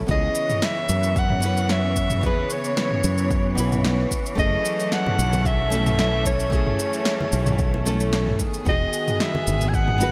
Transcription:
0.07 fretless electric bass C#2, string section C#3 E3 B3 C#5, nylon-string guitar B3 C#4 E4, kick, shaker
0.11 nylon-string guitar G#4, soprano saxophone D#5
0.35 shaker
0.50 mid tom, shaker
0.62 soprano saxophone E5, snare, shaker
0.89 fretless electric bass F#2, shaker
1.03 shaker
1.16 soprano saxophone F#5, kick, shaker
1.30 mid tom
1.40 nylon-string guitar B3 C#4 E4, shaker
1.46 nylon-string guitar B4
1.57 shaker
1.69 soprano saxophone E5, snare, shaker
1.96 kick, shaker
2.10 mid tom, shaker
2.21 nylon-string guitar B3 E4, kick, shaker
2.26 nylon-string guitar G#4, soprano saxophone B4
2.50 soprano saxophone C#5, shaker
2.64 shaker
2.77 snare, shaker
2.91 mid tom
3.04 fretless electric bass F#2, shaker
3.18 shaker
3.31 kick, shaker
3.55 fretless electric bass B1, nylon-string guitar B3 E4, shaker
3.60 nylon-string guitar B4
3.72 mid tom, shaker
3.85 snare, shaker
4.11 kick, shaker
4.26 shaker
4.35 fretless electric bass F#1, string section F#3 A3 C#4, nylon-string guitar A3 C#4 E4, kick, shaker
4.39 nylon-string guitar G#4, soprano saxophone D#5
4.65 shaker
4.80 shaker
4.92 soprano saxophone F#5, snare, shaker
5.06 mid tom, low conga
5.19 fretless electric bass B1, shaker
5.33 low conga, shaker
5.45 soprano saxophone E5, kick, shaker
5.70 nylon-string guitar A3 C#4 E4, high conga, shaker
5.75 nylon-string guitar A4
5.86 mid tom, shaker
5.99 soprano saxophone E5, snare, shaker
6.26 soprano saxophone C#5, kick, muted conga, shaker
6.40 shaker
6.50 nylon-string guitar A3 C#4 E4, kick, shaker
6.55 nylon-string guitar G#4
6.67 mid tom
6.79 shaker
6.93 shaker
7.05 snare, shaker
7.20 low conga
7.32 fretless electric bass B1, shaker
7.46 mid tom, low conga, shaker
7.59 kick, shaker
7.74 muted conga
7.85 nylon-string guitar A3 C#4 E4 A4, high conga, shaker
8.00 shaker
8.13 snare, shaker
8.27 mid tom
8.39 string section D#3 B3 G#4, kick, muted conga, shaker
8.54 shaker
8.65 fretless electric bass E1, nylon-string guitar D#3 B3 F#4, soprano saxophone D#5, kick, shaker
8.70 nylon-string guitar G#4
8.93 shaker
9.08 mid tom, shaker
9.20 soprano saxophone E5, snare, shaker
9.35 low conga
9.47 fretless electric bass G#1, shaker
9.61 low conga, shaker
9.69 soprano saxophone G#5
9.74 soprano saxophone F#5, kick, shaker
9.88 mid tom
9.98 nylon-string guitar B3 D#4 F#4, high conga, shaker
10.03 nylon-string guitar B4

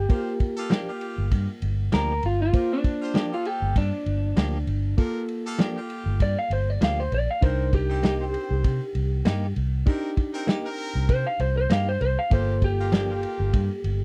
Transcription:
Already playing: clean electric guitar G4
0.09 reed electric piano A#3 F4 A#4, horn section F4 G4 C5, kick, ride
0.40 kick, ride
0.56 horn section F4 G4 A4
0.70 clean electric guitar F3 A#3 D4 G4, snare, ride
0.87 horn section F4 G4
1.01 ride
1.18 fingered electric bass G1
1.31 fingered electric bass G2, kick, ride
1.62 fingered electric bass G1, ride
1.92 fingered electric bass D2, clean electric guitar F3 A#3 D4 G4 A#4, snare, ride
2.23 fingered electric bass G1, clean electric guitar F4, ride
2.42 clean electric guitar F4
2.53 reed electric piano A#3 F4 C5, horn section F4 G4 A#4, kick, ride
2.73 clean electric guitar D4
2.84 kick, ride
3.01 horn section F4 G4 C5
3.14 clean electric guitar F3 A#3 D4 G4, snare, ride
3.32 horn section F4 G4 A4, clean electric guitar F4
3.45 clean electric guitar G4, ride
3.62 fingered electric bass G1
3.76 fingered electric bass G2, clean electric guitar D4, kick, ride
4.06 fingered electric bass G1, ride
4.37 fingered electric bass D2, clean electric guitar F3 A#3 D4 G4, snare, ride
4.67 fingered electric bass G1, ride
4.97 reed electric piano A#3 F4 A4, horn section F4 G4 A#4, kick, ride
5.29 ride
5.45 horn section F4 G4 A4
5.59 clean electric guitar F3 A#3 D4 G4, snare, ride
5.75 horn section F4 G4
5.90 ride
6.06 fingered electric bass G1
6.20 fingered electric bass G2, clean electric guitar D5, kick, ride
6.39 clean electric guitar F5
6.50 fingered electric bass G1, clean electric guitar C5, ride
6.70 clean electric guitar D5
6.81 fingered electric bass D2, clean electric guitar F3 A#3 D4 G4 F5, snare, ride
7.00 clean electric guitar C5
7.12 fingered electric bass A#1, clean electric guitar D5, ride
7.30 clean electric guitar F5
7.41 fingered electric bass C2, horn section C4 D#4 A#4, reed electric piano D4 D#4 A#4, clean electric guitar C5, kick, ride
7.73 clean electric guitar G4, kick, ride
7.88 horn section C4 D#4 G4
8.03 clean electric guitar A#3 D#4 G4, snare, ride
8.19 horn section C4 C5
8.34 ride
8.51 fingered electric bass C2
8.64 fingered electric bass C3, kick, ride
8.95 fingered electric bass C2, ride
9.25 fingered electric bass G2, clean electric guitar A#3 D#4 G4, snare, ride
9.56 fingered electric bass C2, ride
9.86 horn section C4 D#4 A#4, reed electric piano D4 D#4 G4, kick, ride
10.17 kick, ride
10.33 horn section C4 D#4 A#4
10.47 clean electric guitar A#3 D#4 G4, snare, ride
10.65 horn section C4 A#4
10.78 ride
10.95 fingered electric bass C2
11.09 fingered electric bass C3, clean electric guitar C5, kick, ride
11.27 clean electric guitar F5
11.40 fingered electric bass C2, clean electric guitar C5, ride
11.57 clean electric guitar C5
11.70 fingered electric bass G2, clean electric guitar A#3 D#4 G4 F5, snare, ride
11.89 clean electric guitar C5
12.01 fingered electric bass C2, clean electric guitar C5, ride
12.19 clean electric guitar F5
12.30 fingered electric bass G1, reed electric piano A#3 F4 A4, horn section A#3 F4 G4, clean electric guitar C5, kick, ride
12.62 clean electric guitar G4, kick, ride
12.78 horn section A#3 F4 G4
12.92 clean electric guitar F3 A#3 D4 G4, snare, ride
13.09 horn section A#3 F4 G4
13.23 ride
13.40 fingered electric bass G1
13.53 fingered electric bass G2, kick, ride
13.84 fingered electric bass G1, ride

